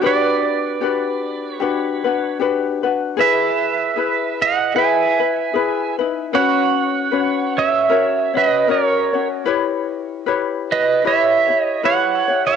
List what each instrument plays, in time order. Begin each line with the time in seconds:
0.01 ukulele D4 F#4 G4 B4
0.06 pedal steel guitar B4 D5
0.81 ukulele D4 F#4 G4 B4
1.51 pedal steel guitar C#5
1.60 ukulele D4 F#4 G4 B4
2.04 ukulele D4 F#4 B4
2.39 ukulele D4 F#4 G4 B4
2.83 ukulele D4 F#4 B4
3.17 ukulele E4 G#4 B4, pedal steel guitar E5
3.22 pedal steel guitar B4
3.96 ukulele E4 G#4 B4
4.42 pedal steel guitar D#5 F#5
4.75 ukulele E4 G#4 B4, pedal steel guitar E5 G#5
5.20 ukulele E4 B4
5.54 ukulele E4 G#4 B4
5.99 ukulele D#4 E4 B4
6.33 ukulele C#4 F#4 B4 C#5, pedal steel guitar C#5 F#5
7.11 ukulele C#4 F#4 B4 C#5
7.58 pedal steel guitar C#5 E5
7.89 ukulele C#4 F#4 A#4 C#5
8.34 ukulele C#4 F#4 C#5, pedal steel guitar B4 D#5
8.68 ukulele C#4 F#4 A#4 C#5, pedal steel guitar A#4 C#5
9.13 ukulele C#4 F#4 C#5
9.46 ukulele E4 G4 B4 C#5
10.26 ukulele E4 G4 B4 C#5
10.72 pedal steel guitar B4 D#5
11.04 ukulele E4 G4 B4 C#5, pedal steel guitar C#5 E5
11.48 ukulele E4 G4 C#5
11.62 pedal steel guitar D#5
11.83 ukulele E4 G4 B4 C#5, pedal steel guitar C#5 F#5
12.28 ukulele E4 G4 C#5
12.47 pedal steel guitar C#5 F5